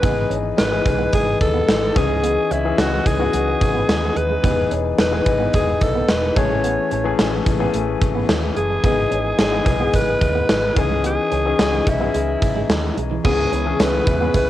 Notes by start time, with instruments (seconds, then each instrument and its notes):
Already playing: alto saxophone B4
0.02 fingered electric bass G#1, grand piano E3 B3 D#4 G#4, clean electric guitar B3, kick, closed hi-hat
0.30 fingered electric bass G#1, clean electric guitar C#4, closed hi-hat
0.44 muted clean electric guitar stroke
0.57 fingered electric bass G#1, clean electric guitar C#4, alto saxophone B4, snare, closed hi-hat
0.71 grand piano E3 B3 D#4 G#4, muted clean electric guitar stroke
0.86 fingered electric bass B1, grand piano E3 B3 D#4 G#4, kick, closed hi-hat
0.99 clean electric guitar B3
1.13 fingered electric bass G#1, clean electric guitar G#3, alto saxophone G#4, kick, closed hi-hat
1.27 muted clean electric guitar stroke
1.41 fingered electric bass D#2, alto saxophone A4, kick, closed hi-hat
1.54 clean electric guitar B3
1.68 fingered electric bass G#1, muted clean electric guitar stroke, snare, closed hi-hat
1.95 fingered electric bass C#2, grand piano E3 C#4 D#4 G#4, clean electric guitar G#3, alto saxophone G#4, kick, closed hi-hat
2.10 clean electric guitar G#3
2.23 clean electric guitar B3, closed hi-hat
2.51 fingered electric bass C#2, clean electric guitar C#4, alto saxophone E4, closed hi-hat
2.65 grand piano E3 C#4 D#4 G#4, muted clean electric guitar stroke
2.78 fingered electric bass C#2, clean electric guitar C#4, alto saxophone F#4, snare, closed hi-hat
2.92 muted clean electric guitar stroke
3.06 fingered electric bass C#2, alto saxophone G#4, kick, closed hi-hat
3.19 grand piano E3 C#4 D#4 F#4, clean electric guitar B3
3.33 fingered electric bass C#2, clean electric guitar G#3, closed hi-hat
3.47 muted clean electric guitar stroke
3.61 fingered electric bass G#1, kick, closed hi-hat
3.74 clean electric guitar B3
3.88 fingered electric bass D#2, muted clean electric guitar stroke, snare, closed hi-hat
4.16 fingered electric bass D#2, clean electric guitar G#3, alto saxophone B4, closed hi-hat
4.30 clean electric guitar G#3
4.43 fingered electric bass E1, grand piano E3 B3 D#4 G4, clean electric guitar B3, kick, closed hi-hat
4.51 grand piano G#4
4.71 fingered electric bass E1, clean electric guitar C#4, closed hi-hat
4.85 muted clean electric guitar stroke
4.98 fingered electric bass E1, clean electric guitar C#4, alto saxophone B4, snare, closed hi-hat
5.11 grand piano E3 B3 D#4 G#4, muted clean electric guitar stroke
5.26 fingered electric bass G#1, grand piano E3 B3 D#4 G#4, kick, closed hi-hat
5.40 clean electric guitar B3
5.53 fingered electric bass E1, clean electric guitar G#3, alto saxophone G#4, kick, closed hi-hat
5.68 muted clean electric guitar stroke
5.81 fingered electric bass B1, alto saxophone A4, kick, closed hi-hat
5.95 clean electric guitar B3
6.08 fingered electric bass E1, alto saxophone B4, muted clean electric guitar stroke, snare, closed hi-hat
6.36 fingered electric bass A1, grand piano E3 A3 C#4 G#4, clean electric guitar G#3, alto saxophone C#5, kick, closed hi-hat
6.50 clean electric guitar G#3
6.64 clean electric guitar B3, closed hi-hat
6.91 fingered electric bass A1, clean electric guitar C#4, closed hi-hat
7.04 grand piano E3 A3 C#4 G#4, muted clean electric guitar stroke
7.19 fingered electric bass A1, clean electric guitar C#4, snare, closed hi-hat
7.33 muted clean electric guitar stroke
7.46 fingered electric bass A1, kick, closed hi-hat
7.59 grand piano E3 A3 C#4 G#4, clean electric guitar B3
7.74 fingered electric bass A1, clean electric guitar A3, closed hi-hat
7.88 muted clean electric guitar stroke
8.01 fingered electric bass G#1, kick, closed hi-hat
8.15 clean electric guitar B3
8.29 fingered electric bass D#2, muted clean electric guitar stroke, snare, closed hi-hat
8.56 fingered electric bass F#1, clean electric guitar G#3, alto saxophone G#4, closed hi-hat
8.70 clean electric guitar G#3
8.83 fingered electric bass G#1, grand piano E3 B3 D#4 G#4, clean electric guitar B3, kick, closed hi-hat
9.11 fingered electric bass G#1, clean electric guitar C#4, closed hi-hat
9.25 muted clean electric guitar stroke
9.39 fingered electric bass G#1, clean electric guitar C#4, alto saxophone G#4, snare, closed hi-hat
9.52 grand piano E3 B3 D#4 G#4, muted clean electric guitar stroke
9.65 fingered electric bass B1, grand piano E3 B3 D#4 G#4, kick, closed hi-hat
9.80 clean electric guitar B3
9.94 fingered electric bass G#1, clean electric guitar G#3, alto saxophone B4, kick, closed hi-hat
10.08 muted clean electric guitar stroke
10.21 fingered electric bass D#2, kick, closed hi-hat
10.35 clean electric guitar B3
10.49 fingered electric bass G#1, muted clean electric guitar stroke, snare, closed hi-hat
10.76 fingered electric bass C#2, grand piano E3 C#4 D#4 G#4, clean electric guitar G#3, alto saxophone G#4, kick, closed hi-hat
10.90 clean electric guitar G#3
11.04 clean electric guitar B3, alto saxophone G#4, closed hi-hat
11.32 fingered electric bass C#2, clean electric guitar C#4, closed hi-hat
11.45 grand piano E3 C#4 D#4 G#4, muted clean electric guitar stroke
11.59 fingered electric bass C#2, clean electric guitar C#4, snare, closed hi-hat
11.73 muted clean electric guitar stroke
11.87 fingered electric bass B1, alto saxophone E4, kick, closed hi-hat
12.00 grand piano E3 C#4 G#4 D#5, clean electric guitar B3
12.14 fingered electric bass C#2, clean electric guitar G#3, closed hi-hat
12.28 muted clean electric guitar stroke
12.42 fingered electric bass G#1, kick, closed hi-hat
12.55 clean electric guitar G#3
12.69 fingered electric bass D#2, muted clean electric guitar stroke, snare, closed hi-hat
12.97 fingered electric bass B1, clean electric guitar G#3, closed hi-hat
13.11 clean electric guitar E3
13.24 fingered electric bass C#2, analog synth pad C#3 G#3 B3 E4, grand piano E3 B3 C#4 G#4, clean electric guitar B3, alto saxophone G#4, kick, crash, tambourine
13.52 fingered electric bass C#2, clean electric guitar C#4, closed hi-hat, tambourine
13.65 grand piano E3 B3 C#4 G#4, muted clean electric guitar stroke
13.79 fingered electric bass C#2, clean electric guitar C#4, alto saxophone B4, snare, closed hi-hat, tambourine
13.93 muted clean electric guitar stroke
14.07 fingered electric bass E2, kick, closed hi-hat, tambourine
14.20 grand piano E3 B3 C#4 G#4, clean electric guitar B3
14.34 fingered electric bass C#2, clean electric guitar G#3, alto saxophone B4, kick, closed hi-hat, tambourine